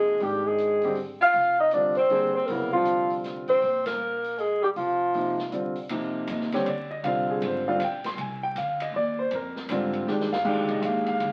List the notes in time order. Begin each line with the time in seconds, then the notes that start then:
Already playing: F1 C3 F3 G#3 A#3 D#4 G#4
0.19 G#1 D#3 G3 G#3 D4 G4 G5, open hi-hat
0.44 G#3 G#4
0.58 closed hi-hat
0.82 D3 G3 C4 G4, open hi-hat
0.95 open hi-hat
1.20 F4 F5, muted upright bass stroke
1.33 F1, open hi-hat
1.59 D#4 D#5
1.71 D3 G3 C4 D4 F4 D5, closed hi-hat
1.95 C4 C5, open hi-hat
2.10 D#2 D3 G3 C4 G#4, open hi-hat
2.35 C4 C5
2.46 F1 C#3 F#3 B3 A#4, open hi-hat
2.50 A#3 E4
2.72 D3 F3 G3 C4 F4
2.85 closed hi-hat
3.10 open hi-hat
3.24 snare, closed hi-hat
3.48 C4 C5, kick, open hi-hat
3.62 A#1, open hi-hat
3.86 A#3 A#4, snare, ride
4.24 open hi-hat
4.38 G#3 G#4, open hi-hat
4.62 G3 G4
4.76 F1 F3 F4, open hi-hat
5.14 C3 F3 A#3 D#4, open hi-hat
5.39 snare
5.52 D3 G3 C4 F4, closed hi-hat
5.75 open hi-hat
5.89 F2 C3 F3 A#3 D#4, ride
6.27 D#2 D#5, hi-hat pedal, ride
6.41 snare
6.52 D3 G3 C4 G4 C#5, snare, ride
6.65 D2 D5, ride
6.91 D#5
7.03 C2 D3 G3 C4 F4 F5, ride
7.30 G#4
7.41 G#1, ride
7.46 C5
7.68 D3 G3 C4 F4 F5
7.78 A#1, hi-hat pedal, ride
7.84 G5
8.04 C6, snare, ride
8.17 C2 G#5, ride
8.43 G5
8.55 D2 F5, hi-hat pedal, ride
8.80 D#5, ride
8.94 D#2 D5
9.19 C5
9.31 F2, ride
9.35 A#4
9.56 snare
9.69 G#2 D3 G3 C4 F4, hi-hat pedal, ride
9.93 ride
10.07 G2 D#3 G#3 D4 G4, snare
10.20 snare
10.32 F5, snare
10.44 F2 D#3 G#3 D4 G4, kick, crash
10.57 D2
10.69 C2 D#5, ride
10.81 D#2 E5, hi-hat pedal, ride
10.85 F5
11.06 F5, kick, ride
11.20 D2, ride